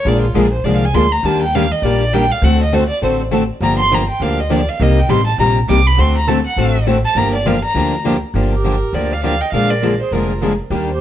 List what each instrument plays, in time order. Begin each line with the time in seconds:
0.05 upright bass A#1, steel-string acoustic guitar D3 F3 G#3 A#3 D4 F4 G#4 A#4, violin D5
0.22 violin F4
0.34 upright bass A#1, steel-string acoustic guitar D3 F3 G#3 A#3 D4 F4 G#4 A#4, violin G#4
0.53 violin C5
0.64 upright bass C2, steel-string acoustic guitar D3 F3 G#3 A#3 D4 F4 G#4 A#4, violin D5
0.74 violin F5
0.85 violin G#5
0.94 upright bass D2, steel-string acoustic guitar D3 F3 G#3 A#3 D4 F4 G#4 A#4, violin C6
1.12 violin A#5
1.23 upright bass D#2, steel-string acoustic guitar D#3 G3 A#3 D4 G4, violin A5
1.43 violin G5
1.55 steel-string acoustic guitar D#3 G3 A#3 D4 G4, violin F5
1.71 violin D#5
1.82 upright bass A#1, steel-string acoustic guitar D#3 G3 A#3 D4 G4, violin D5
2.13 steel-string acoustic guitar D#3 G3 A#3 D4 G4, violin G5
2.32 violin F5
2.42 upright bass D2, steel-string acoustic guitar D3 A3 C4 F#4 A4, violin F#5
2.63 violin D#5
2.72 steel-string acoustic guitar D3 A3 C4 F#4 A4, violin C5
2.89 violin D5
3.02 upright bass A1, steel-string acoustic guitar D3 A3 C4 F#4 A4, violin C5
3.31 steel-string acoustic guitar D3 A3 C4 F#4 A4
3.61 upright bass G1, steel-string acoustic guitar D3 F3 A#3 D4 G4, violin A#5
3.80 violin C6
3.91 steel-string acoustic guitar D3 F3 A#3 D4 G4, violin A#5
4.10 violin G5
4.20 upright bass D2, steel-string acoustic guitar D3 F3 A#3 D4 G4, violin F5
4.40 violin D#5
4.50 steel-string acoustic guitar D3 F3 A#3 D4 G4, violin D5
4.69 violin F5
4.80 upright bass C2, steel-string acoustic guitar C3 G3 A#3 D#4 G4, violin D#5
4.99 violin G5
5.09 upright bass A1, steel-string acoustic guitar C3 G3 A#3 D#4 G4, violin C6
5.26 violin A5
5.38 upright bass A#1, steel-string acoustic guitar C3 G3 A#3 D#4 G4, violin A#5
5.69 upright bass C2, steel-string acoustic guitar C3 G3 A#3 D#4 G4, violin D6
5.87 violin B5
5.98 upright bass D2, steel-string acoustic guitar D3 A3 C4 F#4 A4, violin C6
6.18 violin A#5
6.28 steel-string acoustic guitar D3 A3 C4 F#4 A4, violin A5
6.47 violin F#5
6.56 upright bass A1, steel-string acoustic guitar D3 A3 C4 F#4 A4
6.87 steel-string acoustic guitar D3 A3 C4 F#4 A4
7.05 violin A5
7.15 upright bass G1, steel-string acoustic guitar D3 F3 A#3 D4 G4, violin A#5
7.35 violin D5
7.46 steel-string acoustic guitar D3 F3 A#3 D4 G4, violin F5
7.65 violin A#5
7.75 upright bass D2, steel-string acoustic guitar D3 F3 A#3 D4 G4
8.05 steel-string acoustic guitar D3 F3 A#3 D4 G4
8.34 upright bass G1, steel-string acoustic guitar D3 F3 A#3 D4 G4
8.52 clarinet G4, violin A#4
8.64 steel-string acoustic guitar D3 F3 A#3 D4 G4
8.93 upright bass D2, steel-string acoustic guitar D3 F3 A#3 D4 G4, clarinet A#4, violin D5
9.12 clarinet D5, violin F5
9.23 steel-string acoustic guitar D3 F3 A#3 D4 G4, clarinet D5, violin F5
9.41 clarinet D#5, violin G5
9.52 upright bass A#1, steel-string acoustic guitar D3 F3 G#3 A#3 D4 F4 G#4 A#4, clarinet D5, violin F5
9.70 clarinet A#4, violin D5
9.81 steel-string acoustic guitar D3 F3 G#3 A#3 D4 F4 G#4 A#4
10.00 clarinet G#4, violin C5
10.11 upright bass F1, steel-string acoustic guitar D3 F3 G#3 A#3 D4 F4 G#4 A#4, clarinet F4, violin A#4
10.41 steel-string acoustic guitar D3 F3 G#3 A#3 D4 F4 G#4 A#4
10.70 upright bass D#2, steel-string acoustic guitar D#3 G3 A#3 D4 G4
10.90 clarinet G4, violin C5